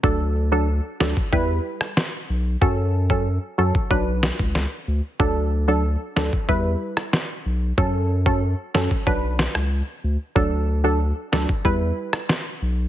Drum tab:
SD |------o----ro---|----------o-o---|------o----ro---|------o---or----|
BD |o------oo-------|o--o---oo--o----|o------oo-------|o--o---oo-------|

SD |------o----ro---|
BD |o------oo-------|